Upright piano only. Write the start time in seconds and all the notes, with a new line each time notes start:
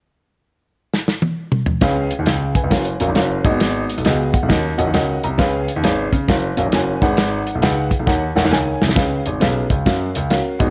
1.81 C#3 C#4 G#4 B4 F5
2.26 G#4 F5
2.55 B4 G#5
2.70 C#4 F#4 A#4 F5
3.00 C#4 F#4 A#4 F5
3.15 C#4 F#4 A#4 F5
3.45 G#2 A#3 F#4 G#4 D#5
3.50 B3
4.05 B3 F#4 G#4 D#5
4.34 F#5
4.49 D#3 C#4 F#4 A#4 D#5
4.78 C#4 F#4 A#4 D#5 F#5
4.94 C#4 F#4 A#4 D#5 F#5
5.24 A#5
5.38 C#3 C#4 G#4 B4 F5
5.83 C#4 G#4 B4 F5
6.28 C#4 F#4 A#4 F5
6.57 C#4 F#4 A#4 F5
6.73 C#4 F#4 A#4 G#5
7.02 G#2 D#4 G#4 B4 F#5
7.62 D#4 G#4 B4 F#5
8.07 D#3 D#4 A#4 C#5 F#5
8.35 D#4 A#4 C#5 F#5
8.51 D#4 A#4 C#5 G#5
8.95 C#3 C#4 G#4 B4 F5
9.40 C#4 G#4 B4 F5
9.85 C#4 F#4 A#4 F5
10.30 C#4 F#4 A#4 F5
10.59 G#2 B3 F#4 G#4 D#5